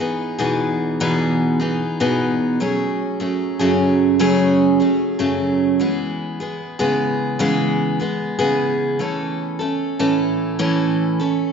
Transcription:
0.00 0.38 E3 soft
0.00 0.38 B3 medium
0.00 0.38 D#4 medium
0.00 0.37 G#4 medium
0.39 0.99 E2 medium
0.39 1.00 B2 medium
0.39 1.00 E3 medium
0.39 1.00 B3 medium
0.39 1.00 D#4 medium
0.39 0.99 G#4 medium
1.00 1.60 E2 medium
1.00 1.61 B2 loud
1.00 1.61 E3 medium
1.00 1.60 B3 medium
1.00 1.59 D#4 medium
1.00 1.58 G#4 medium
1.60 1.99 E3 soft
1.60 1.99 B3 medium
1.60 1.99 D#4 medium
1.60 1.99 G#4 medium
2.00 2.61 E2 medium
2.00 2.61 B2 medium
2.00 2.60 E3 medium
2.00 2.60 B3 medium
2.00 2.60 D#4 medium
2.00 2.60 G#4 medium
2.60 3.20 F#3 medium
2.60 3.20 A3 medium
2.60 3.19 C#4 medium
2.60 3.19 G#4 medium
3.20 3.60 F#3 soft
3.20 3.59 A3 medium
3.20 3.59 C#4 medium
3.20 3.58 G#4 medium
3.59 4.18 F#2 medium
3.59 4.18 C#3 medium
3.59 4.19 F#3 medium
3.59 4.19 A3 medium
3.59 4.19 C#4 medium
3.59 4.20 G#4 medium
4.19 4.80 F#2 medium
4.19 4.80 C#3 medium
4.19 4.80 F#3 loud
4.19 4.80 A3 medium
4.19 4.79 C#4 loud
4.19 4.79 G#4 loud
4.80 5.19 F#3 soft
4.80 5.19 A3 soft
4.80 5.18 C#4 medium
4.80 5.18 G#4 medium
5.19 5.80 F#2 medium
5.19 5.80 C#3 medium
5.19 5.79 F#3 medium
5.19 5.80 A3 medium
5.19 5.80 C#4 medium
5.19 5.79 G#4 medium
5.80 6.40 E3 medium
5.80 6.40 G#3 medium
5.80 6.40 B3 medium
5.80 6.39 G#4 medium
6.40 6.78 G#3 soft
6.40 6.79 B3 medium
6.40 6.78 G#4 medium
6.79 7.38 C#3 medium
6.79 7.39 E3 medium
6.79 7.39 G#3 medium
6.79 7.39 B3 medium
6.79 7.39 G#4 medium
7.39 8.00 C#3 medium
7.39 8.00 E3 medium
7.39 8.00 G#3 medium
7.39 8.00 B3 loud
7.39 7.98 G#4 loud
8.00 8.38 G#3 soft
8.00 8.38 B3 medium
8.00 8.37 G#4 medium
8.39 9.00 C#3 medium
8.39 8.98 E3 medium
8.39 8.99 G#3 medium
8.39 8.99 B3 medium
8.39 8.99 G#4 medium
8.99 9.60 E3 medium
8.99 9.60 A3 medium
8.99 9.59 C#4 medium
8.99 9.58 A4 medium
9.59 9.99 A3 soft
9.59 9.99 C#4 medium
9.59 9.98 A4 medium
9.99 10.58 A2 medium
9.99 10.58 E3 medium
9.99 10.59 A3 medium
9.99 10.58 C#4 medium
9.99 10.59 A4 medium
10.59 11.19 A2 medium
10.59 11.20 E3 medium
10.59 11.20 A3 medium
10.59 11.20 C#4 loud
10.59 11.18 A4 medium
11.20 11.52 A3 soft
11.20 11.52 C#4 medium
11.20 11.52 A4 medium

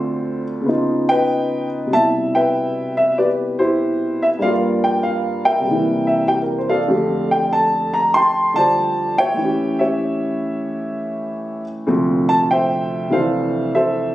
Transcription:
0.00 0.64 D2 medium
0.00 0.66 D3 medium
0.00 0.68 C4 medium
0.00 0.70 F4 medium
0.00 0.64 A4 soft
0.00 0.42 C5 medium
0.61 1.88 C#3 medium
0.66 1.90 B3 medium
0.66 1.92 D#4 medium
0.73 1.94 F4 medium
1.09 1.88 B4 medium
1.09 1.89 D#5 medium
1.09 1.67 G5 medium
1.87 4.38 C3 soft
1.91 4.42 B2 soft
1.91 4.40 G3 soft
1.91 2.34 E5 medium
1.91 2.02 A5 medium
1.98 3.58 E4 soft
2.35 3.17 B4 medium
2.35 2.96 E5 medium
2.35 2.92 G5 medium
2.97 3.15 E5 medium
3.18 3.58 G4 medium
3.18 4.37 B4 medium
3.18 3.27 D5 medium
3.59 4.37 E4 medium
3.59 4.37 G4 medium
3.59 4.22 C5 medium
4.22 4.27 E5 medium
4.39 5.64 G2 medium
4.39 5.62 G3 soft
4.39 5.66 A#3 soft
4.39 5.62 D5 medium
4.39 4.51 F5 medium
4.43 5.66 F4 medium
4.43 5.45 A#4 medium
4.84 5.02 G5 medium
5.03 5.41 F5 medium
5.45 6.41 A#4 medium
5.45 6.05 E5 medium
5.45 6.23 G5 medium
5.60 6.87 C3 soft
5.60 6.88 G3 soft
5.68 6.92 E3 soft
5.68 6.90 A#3 soft
6.07 6.28 E5 medium
6.27 6.56 G4 soft
6.27 6.37 G5 medium
6.43 6.69 A#4 soft
6.58 6.77 C5 soft
6.69 7.89 A4 medium
6.69 7.89 D5 medium
6.69 7.33 F5 medium
6.88 9.37 F2 soft
6.88 8.52 D3 soft
6.88 9.38 A3 soft
6.88 9.38 G4 medium
7.31 7.52 G5 medium
7.53 7.94 A5 medium
7.94 8.12 A#5 medium
8.14 9.17 G5 medium
8.14 8.54 A5 medium
8.14 8.52 C6 medium
8.54 9.37 D3 soft
8.54 9.38 G3 soft
8.54 9.39 F4 soft
8.54 9.35 D5 medium
8.54 9.19 A5 loud
8.58 9.35 C5 medium
9.18 9.80 C#5 medium
9.18 9.77 E5 medium
9.18 9.82 G5 loud
9.34 11.85 A2 medium
9.34 11.86 E3 soft
9.41 11.88 C#4 medium
9.41 9.79 G4 medium
9.79 11.62 G4 medium
9.79 11.63 C#5 medium
9.79 11.62 E5 medium
11.87 14.15 D2 medium
11.87 13.08 C3 medium
11.87 14.15 F3 medium
11.87 14.15 C4 medium
12.29 12.34 A5 medium
12.51 13.12 C5 medium
12.51 13.71 E5 medium
12.51 13.14 G5 medium
13.10 14.15 C3 soft
13.10 14.15 E3 soft
13.10 14.15 D4 soft
13.10 13.74 A4 medium
13.10 13.75 C5 medium
13.10 13.70 F5 medium
13.75 14.15 A4 medium
13.75 14.15 C5 medium
13.75 14.15 E5 medium

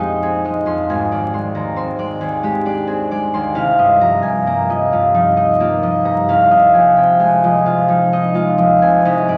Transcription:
0.00 0.92 A#1 medium
0.00 0.65 F2 soft
0.00 0.43 G#3 soft
0.00 0.92 A#3 soft
0.00 0.21 C4 medium
0.00 3.90 D#4 medium
0.00 0.15 G4 soft
0.00 0.21 G#4 soft
0.00 0.93 A#4 soft
0.00 0.44 D#5 medium
0.00 0.88 G#5 medium
0.00 0.65 C6 medium
0.22 1.75 C4 medium
0.22 2.20 G#4 medium
0.45 1.32 G#3 soft
0.45 3.77 D#5 medium
0.66 0.92 F2 medium
0.66 1.33 C6 medium
0.90 3.60 G#1 medium
0.90 3.60 G#5 medium
1.11 1.54 D#2 soft
1.11 1.98 D5 medium
1.33 1.97 G#3 soft
1.33 1.76 C6 medium
1.55 2.20 D#2 medium
1.55 1.93 A#5 soft
1.76 2.86 C4 medium
1.76 3.33 C6 medium
1.98 2.42 G#3 medium
1.98 2.65 D5 medium
2.21 3.33 D#2 medium
2.21 2.87 G#4 medium
2.43 3.11 G#3 medium
2.43 2.82 G4 medium
2.66 6.31 D4 medium
2.66 3.10 D5 medium
2.87 6.77 C4 medium
2.87 3.59 G#4 medium
3.11 3.60 G#3 medium
3.11 6.32 D5 medium
3.34 3.60 D#2 medium
3.34 7.24 C6 medium
3.55 6.27 C2 medium
3.55 6.28 F5 medium
3.78 4.22 G2 medium
3.78 4.69 D#5 medium
4.01 4.69 F3 medium
4.01 4.46 A#5 medium
4.22 4.92 G2 medium
4.22 4.62 G#5 medium
4.47 5.59 A#3 medium
4.47 6.04 A#5 medium
4.70 5.13 F3 medium
4.70 5.36 D#5 medium
4.92 6.04 G2 medium
4.92 5.59 F4 medium
5.14 5.82 F3 medium
5.14 5.36 D#4 medium
5.37 7.88 D#4 medium
5.37 5.82 D#5 medium
5.60 6.32 A#3 medium
5.60 7.65 F4 medium
5.83 6.73 F3 medium
5.83 6.50 D#5 medium
6.05 6.32 G2 medium
6.05 6.32 A#5 medium
6.29 9.04 C2 medium
6.29 9.10 F5 medium
6.51 6.96 C3 medium
6.51 7.43 D#5 medium
6.74 7.43 F3 medium
6.74 7.19 G#5 medium
6.96 7.65 C3 medium
6.96 7.36 G5 medium
7.20 8.33 G#3 medium
7.20 8.80 G#5 medium
7.44 7.88 F3 medium
7.44 8.12 D#5 medium
7.66 8.81 C3 medium
7.66 8.33 F4 medium
7.88 8.57 F3 medium
7.88 8.11 D#4 medium
8.12 9.37 D#4 medium
8.12 8.57 D#5 medium
8.34 9.09 G#3 medium
8.34 9.09 F4 medium
8.58 9.09 F3 medium
8.58 9.05 D#5 medium
8.82 9.10 C3 medium
8.82 9.09 G#5 medium
9.05 9.37 C2 medium
9.05 9.37 D#5 medium
9.28 9.37 G2 medium
9.28 9.37 D5 medium

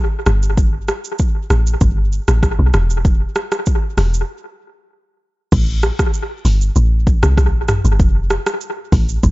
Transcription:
0.26 0.91 G1 loud
0.26 cross-stick loud
0.26 shaker medium
0.43 shaker medium
0.57 kick loud
0.57 shaker medium
0.88 cross-stick loud
0.88 shaker medium
1.04 shaker medium
1.19 kick medium
1.19 shaker medium
1.50 1.76 A1 medium
1.50 cross-stick medium
1.50 shaker medium
1.67 shaker medium
1.81 2.20 G1 medium
1.81 kick loud
1.81 shaker medium
2.12 shaker medium
2.28 2.54 A1 medium
2.28 cross-stick loud
2.28 shaker medium
2.43 kick loud
2.43 cross-stick medium
2.43 shaker medium
2.59 2.71 B1 medium
2.74 3.25 E1 loud
2.74 cross-stick loud
2.74 shaker medium
2.90 shaker medium
3.05 kick loud
3.05 shaker medium
3.35 cross-stick loud
3.35 shaker medium
3.52 cross-stick loud
3.52 shaker medium
3.66 kick medium
3.66 shaker medium
3.98 4.23 E1 medium
3.98 cross-stick medium
3.98 open hi-hat medium
3.98 shaker medium
4.14 shaker medium
5.52 5.91 A1 loud
5.52 kick loud
5.52 crash loud
5.52 shaker medium
5.83 cross-stick loud
5.83 shaker medium
5.99 kick loud
5.99 cross-stick loud
5.99 shaker medium
6.14 shaker medium
6.45 6.71 G1 medium
6.45 open hi-hat medium
6.45 shaker medium
6.61 shaker medium
6.76 7.15 A1 loud
6.76 shaker medium
7.07 kick loud
7.07 shaker medium
7.23 7.55 C2 medium
7.23 cross-stick loud
7.23 shaker medium
7.37 kick loud
7.37 cross-stick medium
7.37 shaker medium
7.54 7.80 A1 medium
7.68 cross-stick loud
7.68 mid tom loud
7.68 shaker medium
7.85 8.01 G1 medium
7.85 shaker medium
8.00 8.39 F1 loud
8.00 kick loud
8.00 shaker medium
8.30 cross-stick loud
8.30 shaker medium
8.46 cross-stick loud
8.46 shaker medium
8.61 shaker medium
8.92 9.18 A1 medium
8.92 kick loud
8.92 open hi-hat medium
8.92 shaker medium
9.09 shaker medium
9.23 9.31 F1 loud
9.23 kick medium
9.23 shaker medium

